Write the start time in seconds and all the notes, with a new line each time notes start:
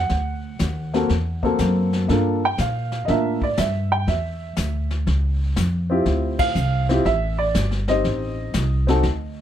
Already playing: F#5
0.09 D2, brush sweep, snare
0.59 D#2, snare, hi-hat pedal
0.94 A#3 C4 F#4 A4, snare
1.09 E2, brush sweep, snare
1.43 A#3 C4 F#4 A4, kick
1.58 F#2, snare, hi-hat pedal
1.93 snare
2.08 G2 A#3 D4 F4 A4, brush sweep, snare
2.45 G5
2.58 A#2 F5, snare, hi-hat pedal
2.92 snare
3.05 A2 A#3 D4 F4 D#5, brush sweep, snare
3.09 A#4 E5
3.42 D5, kick
3.57 G2 E5, snare, hi-hat pedal
3.92 G5
4.07 E2 E5, brush sweep, snare
4.56 D2, snare, hi-hat pedal
4.91 snare
5.07 C#2, brush sweep, snare
5.56 F2, snare, hi-hat pedal
5.90 C4 E4 F4 G4
6.06 D2, brush sweep, snare
6.39 F5, kick, ride
6.55 C2, hi-hat pedal
6.89 C4 E4 F4 G4, snare
7.05 A1 E5, brush sweep, snare
7.38 D5
7.54 G1, snare, hi-hat pedal
7.71 snare
7.88 C4 D#4 G4 C5 D#5, snare
8.04 A1, brush sweep, snare
8.53 C2, snare, hi-hat pedal
8.87 C4 D#4 F#4 A4, snare
9.03 D2, brush sweep, snare